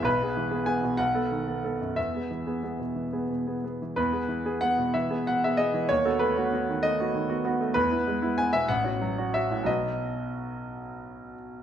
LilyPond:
<<
  \new Staff \with { instrumentName = "Grand piano" } { \time 6/8 \key e \major \tempo 4. = 62 b'4 gis''8 fis''4. | e''2~ e''8 r8 | b'4 fis''8 e''8 fis''16 e''16 dis''8 | cis''16 a'16 b'4 dis''4. |
b'4 gis''16 e''16 fis''4 e''8 | dis''2~ dis''8 r8 | }
  \new Staff \with { instrumentName = "Grand piano" } { \time 6/8 \key e \major b,,16 <b gis'>16 e16 <b gis'>16 <b gis'>16 b,16 b,,16 <b a'>16 dis16 <b a'>16 <b a'>16 fis,16 | e,16 <b gis'>16 e16 <b gis'>16 <b gis'>16 b,16 e16 <b gis'>16 b,16 <b gis'>16 <b gis'>16 e16 | e,16 <b gis'>16 e16 <b gis'>16 <b gis'>16 b,16 e16 <b gis'>16 b,16 <b gis'>16 <b gis'>16 e16 | dis,16 <b fis'>16 a16 <b fis'>16 <b fis'>16 dis16 a16 <b fis'>16 dis16 <b fis'>16 <b fis'>16 a16 |
e,16 <b e'>16 gis16 <b e'>16 <b e'>16 b,16 a,,16 <cis' fis'>16 fis16 <cis' fis'>16 <cis' fis'>16 a,16 | <b,, fis b fis'>2. | }
>>